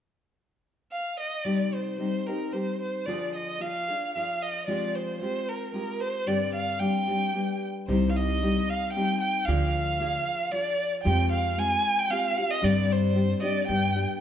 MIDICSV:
0, 0, Header, 1, 4, 480
1, 0, Start_track
1, 0, Key_signature, -3, "minor"
1, 0, Tempo, 536673
1, 1291, Time_signature, 3, 2, 24, 8
1, 7528, Tempo, 528169
1, 12788, End_track
2, 0, Start_track
2, 0, Title_t, "Violin"
2, 0, Program_c, 0, 40
2, 821, Note_on_c, 0, 77, 57
2, 1052, Note_off_c, 0, 77, 0
2, 1074, Note_on_c, 0, 75, 59
2, 1290, Note_on_c, 0, 74, 51
2, 1304, Note_off_c, 0, 75, 0
2, 1554, Note_on_c, 0, 72, 49
2, 1568, Note_off_c, 0, 74, 0
2, 1775, Note_off_c, 0, 72, 0
2, 1781, Note_on_c, 0, 72, 56
2, 2027, Note_on_c, 0, 70, 50
2, 2040, Note_off_c, 0, 72, 0
2, 2258, Note_on_c, 0, 72, 55
2, 2272, Note_off_c, 0, 70, 0
2, 2509, Note_off_c, 0, 72, 0
2, 2514, Note_on_c, 0, 72, 54
2, 2736, Note_on_c, 0, 74, 54
2, 2749, Note_off_c, 0, 72, 0
2, 2994, Note_off_c, 0, 74, 0
2, 3001, Note_on_c, 0, 75, 59
2, 3230, Note_on_c, 0, 77, 75
2, 3244, Note_off_c, 0, 75, 0
2, 3705, Note_off_c, 0, 77, 0
2, 3714, Note_on_c, 0, 77, 62
2, 3954, Note_on_c, 0, 75, 65
2, 3968, Note_off_c, 0, 77, 0
2, 4170, Note_off_c, 0, 75, 0
2, 4176, Note_on_c, 0, 74, 55
2, 4428, Note_on_c, 0, 72, 53
2, 4442, Note_off_c, 0, 74, 0
2, 4648, Note_off_c, 0, 72, 0
2, 4653, Note_on_c, 0, 72, 64
2, 4904, Note_on_c, 0, 70, 55
2, 4918, Note_off_c, 0, 72, 0
2, 5113, Note_off_c, 0, 70, 0
2, 5119, Note_on_c, 0, 70, 64
2, 5372, Note_on_c, 0, 72, 76
2, 5386, Note_off_c, 0, 70, 0
2, 5609, Note_on_c, 0, 74, 68
2, 5622, Note_off_c, 0, 72, 0
2, 5854, Note_off_c, 0, 74, 0
2, 5859, Note_on_c, 0, 77, 68
2, 6077, Note_on_c, 0, 79, 78
2, 6091, Note_off_c, 0, 77, 0
2, 6819, Note_off_c, 0, 79, 0
2, 7045, Note_on_c, 0, 72, 62
2, 7242, Note_on_c, 0, 77, 49
2, 7255, Note_off_c, 0, 72, 0
2, 7297, Note_on_c, 0, 75, 70
2, 7311, Note_off_c, 0, 77, 0
2, 7780, Note_on_c, 0, 77, 67
2, 7794, Note_off_c, 0, 75, 0
2, 7989, Note_off_c, 0, 77, 0
2, 7995, Note_on_c, 0, 79, 80
2, 8239, Note_off_c, 0, 79, 0
2, 8251, Note_on_c, 0, 79, 78
2, 8471, Note_on_c, 0, 77, 72
2, 8484, Note_off_c, 0, 79, 0
2, 9435, Note_on_c, 0, 74, 76
2, 9448, Note_off_c, 0, 77, 0
2, 9809, Note_off_c, 0, 74, 0
2, 9907, Note_on_c, 0, 79, 76
2, 10153, Note_off_c, 0, 79, 0
2, 10166, Note_on_c, 0, 77, 71
2, 10410, Note_on_c, 0, 80, 89
2, 10424, Note_off_c, 0, 77, 0
2, 10774, Note_on_c, 0, 79, 87
2, 10788, Note_off_c, 0, 80, 0
2, 10880, Note_on_c, 0, 77, 75
2, 10894, Note_off_c, 0, 79, 0
2, 11246, Note_on_c, 0, 75, 78
2, 11259, Note_off_c, 0, 77, 0
2, 11367, Note_on_c, 0, 74, 76
2, 11381, Note_off_c, 0, 75, 0
2, 11623, Note_on_c, 0, 72, 69
2, 11636, Note_off_c, 0, 74, 0
2, 12035, Note_off_c, 0, 72, 0
2, 12055, Note_on_c, 0, 75, 48
2, 12084, Note_on_c, 0, 74, 72
2, 12098, Note_off_c, 0, 75, 0
2, 12299, Note_off_c, 0, 74, 0
2, 12305, Note_on_c, 0, 79, 79
2, 12656, Note_off_c, 0, 79, 0
2, 12788, End_track
3, 0, Start_track
3, 0, Title_t, "Nylon-string guitar"
3, 0, Program_c, 1, 24
3, 1295, Note_on_c, 1, 48, 50
3, 1296, Note_on_c, 1, 55, 52
3, 1297, Note_on_c, 1, 60, 53
3, 1299, Note_on_c, 1, 63, 58
3, 1302, Note_on_c, 1, 67, 63
3, 1764, Note_off_c, 1, 55, 0
3, 1775, Note_on_c, 1, 55, 34
3, 1776, Note_off_c, 1, 60, 0
3, 1778, Note_off_c, 1, 48, 0
3, 1780, Note_off_c, 1, 63, 0
3, 1781, Note_off_c, 1, 67, 0
3, 1787, Note_on_c, 1, 60, 37
3, 1789, Note_on_c, 1, 63, 40
3, 1791, Note_on_c, 1, 67, 38
3, 2026, Note_off_c, 1, 67, 0
3, 2032, Note_off_c, 1, 55, 0
3, 2034, Note_off_c, 1, 63, 0
3, 2037, Note_on_c, 1, 67, 34
3, 2038, Note_off_c, 1, 60, 0
3, 2045, Note_on_c, 1, 63, 29
3, 2051, Note_on_c, 1, 60, 30
3, 2249, Note_off_c, 1, 60, 0
3, 2255, Note_off_c, 1, 63, 0
3, 2258, Note_on_c, 1, 55, 32
3, 2260, Note_on_c, 1, 60, 33
3, 2261, Note_off_c, 1, 67, 0
3, 2266, Note_on_c, 1, 63, 36
3, 2272, Note_on_c, 1, 67, 35
3, 2740, Note_off_c, 1, 55, 0
3, 2741, Note_off_c, 1, 60, 0
3, 2744, Note_off_c, 1, 63, 0
3, 2747, Note_off_c, 1, 67, 0
3, 2747, Note_on_c, 1, 50, 48
3, 2747, Note_on_c, 1, 53, 55
3, 2754, Note_on_c, 1, 62, 52
3, 2755, Note_on_c, 1, 65, 63
3, 2761, Note_on_c, 1, 68, 65
3, 3211, Note_off_c, 1, 62, 0
3, 3217, Note_off_c, 1, 53, 0
3, 3220, Note_on_c, 1, 53, 41
3, 3222, Note_off_c, 1, 65, 0
3, 3222, Note_on_c, 1, 62, 39
3, 3224, Note_off_c, 1, 50, 0
3, 3226, Note_on_c, 1, 65, 39
3, 3230, Note_off_c, 1, 68, 0
3, 3233, Note_on_c, 1, 68, 41
3, 3468, Note_off_c, 1, 68, 0
3, 3473, Note_off_c, 1, 65, 0
3, 3476, Note_off_c, 1, 53, 0
3, 3476, Note_off_c, 1, 62, 0
3, 3479, Note_on_c, 1, 68, 33
3, 3484, Note_on_c, 1, 65, 32
3, 3492, Note_on_c, 1, 62, 28
3, 3702, Note_off_c, 1, 68, 0
3, 3704, Note_off_c, 1, 65, 0
3, 3708, Note_off_c, 1, 62, 0
3, 3718, Note_on_c, 1, 53, 39
3, 3721, Note_on_c, 1, 62, 31
3, 3727, Note_on_c, 1, 68, 39
3, 3730, Note_on_c, 1, 65, 34
3, 4172, Note_off_c, 1, 53, 0
3, 4176, Note_off_c, 1, 65, 0
3, 4183, Note_on_c, 1, 53, 60
3, 4183, Note_on_c, 1, 56, 59
3, 4186, Note_off_c, 1, 62, 0
3, 4187, Note_off_c, 1, 68, 0
3, 4187, Note_on_c, 1, 65, 60
3, 4190, Note_on_c, 1, 60, 54
3, 4191, Note_on_c, 1, 67, 63
3, 4647, Note_off_c, 1, 56, 0
3, 4655, Note_off_c, 1, 65, 0
3, 4656, Note_off_c, 1, 53, 0
3, 4657, Note_off_c, 1, 60, 0
3, 4658, Note_on_c, 1, 56, 35
3, 4661, Note_on_c, 1, 60, 35
3, 4665, Note_on_c, 1, 65, 46
3, 4666, Note_off_c, 1, 67, 0
3, 4669, Note_on_c, 1, 67, 44
3, 5114, Note_off_c, 1, 56, 0
3, 5118, Note_off_c, 1, 60, 0
3, 5123, Note_off_c, 1, 65, 0
3, 5125, Note_on_c, 1, 56, 38
3, 5128, Note_on_c, 1, 60, 33
3, 5134, Note_on_c, 1, 65, 38
3, 5137, Note_off_c, 1, 67, 0
3, 5140, Note_on_c, 1, 67, 37
3, 5601, Note_off_c, 1, 56, 0
3, 5602, Note_off_c, 1, 60, 0
3, 5602, Note_on_c, 1, 43, 60
3, 5605, Note_on_c, 1, 55, 58
3, 5607, Note_on_c, 1, 50, 59
3, 5608, Note_off_c, 1, 67, 0
3, 5609, Note_off_c, 1, 65, 0
3, 5611, Note_on_c, 1, 67, 69
3, 5613, Note_on_c, 1, 60, 61
3, 5613, Note_on_c, 1, 62, 70
3, 6075, Note_off_c, 1, 55, 0
3, 6078, Note_off_c, 1, 62, 0
3, 6079, Note_off_c, 1, 60, 0
3, 6079, Note_on_c, 1, 55, 46
3, 6083, Note_off_c, 1, 43, 0
3, 6085, Note_off_c, 1, 50, 0
3, 6089, Note_on_c, 1, 60, 41
3, 6089, Note_on_c, 1, 62, 42
3, 6094, Note_off_c, 1, 67, 0
3, 6098, Note_on_c, 1, 67, 46
3, 6318, Note_off_c, 1, 67, 0
3, 6325, Note_off_c, 1, 62, 0
3, 6328, Note_on_c, 1, 67, 33
3, 6329, Note_off_c, 1, 60, 0
3, 6333, Note_off_c, 1, 55, 0
3, 6335, Note_on_c, 1, 62, 33
3, 6340, Note_on_c, 1, 60, 37
3, 6344, Note_on_c, 1, 55, 31
3, 6547, Note_off_c, 1, 55, 0
3, 6556, Note_off_c, 1, 62, 0
3, 6557, Note_on_c, 1, 55, 39
3, 6561, Note_off_c, 1, 60, 0
3, 6561, Note_off_c, 1, 67, 0
3, 6564, Note_on_c, 1, 59, 33
3, 6567, Note_on_c, 1, 62, 40
3, 6572, Note_on_c, 1, 67, 44
3, 7040, Note_off_c, 1, 55, 0
3, 7047, Note_off_c, 1, 59, 0
3, 7048, Note_off_c, 1, 62, 0
3, 7050, Note_off_c, 1, 67, 0
3, 7051, Note_on_c, 1, 48, 64
3, 7051, Note_on_c, 1, 55, 57
3, 7053, Note_on_c, 1, 63, 69
3, 7055, Note_on_c, 1, 60, 56
3, 7062, Note_on_c, 1, 67, 67
3, 7518, Note_off_c, 1, 55, 0
3, 7524, Note_off_c, 1, 63, 0
3, 7525, Note_off_c, 1, 60, 0
3, 7527, Note_off_c, 1, 48, 0
3, 7529, Note_on_c, 1, 55, 45
3, 7533, Note_off_c, 1, 67, 0
3, 7535, Note_on_c, 1, 63, 48
3, 7536, Note_on_c, 1, 60, 44
3, 7545, Note_on_c, 1, 67, 44
3, 8010, Note_off_c, 1, 55, 0
3, 8013, Note_off_c, 1, 63, 0
3, 8014, Note_off_c, 1, 60, 0
3, 8018, Note_off_c, 1, 67, 0
3, 8021, Note_on_c, 1, 55, 35
3, 8023, Note_on_c, 1, 60, 42
3, 8028, Note_on_c, 1, 63, 50
3, 8030, Note_on_c, 1, 67, 42
3, 8489, Note_off_c, 1, 55, 0
3, 8490, Note_on_c, 1, 50, 61
3, 8491, Note_off_c, 1, 60, 0
3, 8493, Note_on_c, 1, 53, 67
3, 8494, Note_on_c, 1, 62, 67
3, 8497, Note_off_c, 1, 63, 0
3, 8497, Note_off_c, 1, 67, 0
3, 8501, Note_on_c, 1, 65, 62
3, 8501, Note_on_c, 1, 68, 70
3, 8958, Note_off_c, 1, 53, 0
3, 8960, Note_off_c, 1, 62, 0
3, 8961, Note_on_c, 1, 53, 46
3, 8971, Note_off_c, 1, 50, 0
3, 8971, Note_on_c, 1, 62, 48
3, 8973, Note_off_c, 1, 65, 0
3, 8976, Note_off_c, 1, 68, 0
3, 8976, Note_on_c, 1, 65, 50
3, 8979, Note_on_c, 1, 68, 54
3, 9433, Note_off_c, 1, 53, 0
3, 9437, Note_off_c, 1, 62, 0
3, 9437, Note_on_c, 1, 53, 43
3, 9446, Note_off_c, 1, 65, 0
3, 9448, Note_on_c, 1, 62, 44
3, 9449, Note_on_c, 1, 65, 44
3, 9458, Note_off_c, 1, 68, 0
3, 9461, Note_on_c, 1, 68, 45
3, 9905, Note_off_c, 1, 53, 0
3, 9911, Note_off_c, 1, 65, 0
3, 9916, Note_on_c, 1, 53, 64
3, 9919, Note_off_c, 1, 68, 0
3, 9921, Note_off_c, 1, 62, 0
3, 9922, Note_on_c, 1, 56, 63
3, 9922, Note_on_c, 1, 65, 74
3, 9922, Note_on_c, 1, 67, 72
3, 9924, Note_on_c, 1, 60, 70
3, 10387, Note_off_c, 1, 56, 0
3, 10391, Note_off_c, 1, 60, 0
3, 10394, Note_off_c, 1, 65, 0
3, 10395, Note_on_c, 1, 60, 48
3, 10397, Note_on_c, 1, 56, 52
3, 10400, Note_off_c, 1, 53, 0
3, 10405, Note_on_c, 1, 65, 46
3, 10425, Note_off_c, 1, 67, 0
3, 10858, Note_off_c, 1, 56, 0
3, 10869, Note_on_c, 1, 56, 44
3, 10870, Note_off_c, 1, 60, 0
3, 10871, Note_off_c, 1, 65, 0
3, 10881, Note_on_c, 1, 60, 45
3, 10882, Note_on_c, 1, 65, 41
3, 10886, Note_on_c, 1, 67, 52
3, 11122, Note_off_c, 1, 67, 0
3, 11130, Note_off_c, 1, 65, 0
3, 11131, Note_off_c, 1, 56, 0
3, 11133, Note_on_c, 1, 67, 36
3, 11137, Note_off_c, 1, 60, 0
3, 11141, Note_on_c, 1, 65, 35
3, 11147, Note_on_c, 1, 60, 32
3, 11339, Note_off_c, 1, 60, 0
3, 11344, Note_off_c, 1, 67, 0
3, 11345, Note_off_c, 1, 65, 0
3, 11345, Note_on_c, 1, 43, 65
3, 11348, Note_on_c, 1, 62, 84
3, 11350, Note_on_c, 1, 50, 65
3, 11350, Note_on_c, 1, 60, 68
3, 11351, Note_on_c, 1, 55, 73
3, 11355, Note_on_c, 1, 67, 73
3, 11813, Note_off_c, 1, 55, 0
3, 11824, Note_off_c, 1, 60, 0
3, 11824, Note_on_c, 1, 55, 45
3, 11826, Note_off_c, 1, 67, 0
3, 11828, Note_off_c, 1, 62, 0
3, 11832, Note_on_c, 1, 62, 46
3, 11833, Note_off_c, 1, 43, 0
3, 11835, Note_on_c, 1, 60, 46
3, 11836, Note_on_c, 1, 67, 53
3, 11862, Note_off_c, 1, 50, 0
3, 12066, Note_off_c, 1, 67, 0
3, 12068, Note_off_c, 1, 62, 0
3, 12077, Note_on_c, 1, 67, 39
3, 12078, Note_off_c, 1, 60, 0
3, 12078, Note_on_c, 1, 62, 43
3, 12084, Note_off_c, 1, 55, 0
3, 12089, Note_on_c, 1, 60, 34
3, 12095, Note_on_c, 1, 55, 34
3, 12304, Note_off_c, 1, 55, 0
3, 12312, Note_off_c, 1, 67, 0
3, 12313, Note_off_c, 1, 62, 0
3, 12315, Note_on_c, 1, 55, 42
3, 12318, Note_off_c, 1, 60, 0
3, 12324, Note_on_c, 1, 59, 42
3, 12326, Note_on_c, 1, 62, 37
3, 12330, Note_on_c, 1, 67, 41
3, 12553, Note_off_c, 1, 67, 0
3, 12556, Note_off_c, 1, 62, 0
3, 12564, Note_off_c, 1, 59, 0
3, 12564, Note_on_c, 1, 67, 39
3, 12567, Note_on_c, 1, 62, 37
3, 12571, Note_off_c, 1, 55, 0
3, 12575, Note_on_c, 1, 59, 32
3, 12582, Note_on_c, 1, 55, 29
3, 12786, Note_off_c, 1, 62, 0
3, 12788, Note_off_c, 1, 55, 0
3, 12788, Note_off_c, 1, 59, 0
3, 12788, Note_off_c, 1, 67, 0
3, 12788, End_track
4, 0, Start_track
4, 0, Title_t, "Upright bass"
4, 0, Program_c, 2, 32
4, 7051, Note_on_c, 2, 36, 85
4, 7672, Note_off_c, 2, 36, 0
4, 8492, Note_on_c, 2, 38, 83
4, 9115, Note_off_c, 2, 38, 0
4, 9928, Note_on_c, 2, 41, 88
4, 10549, Note_off_c, 2, 41, 0
4, 11361, Note_on_c, 2, 43, 89
4, 11985, Note_off_c, 2, 43, 0
4, 12318, Note_on_c, 2, 43, 82
4, 12632, Note_off_c, 2, 43, 0
4, 12788, End_track
0, 0, End_of_file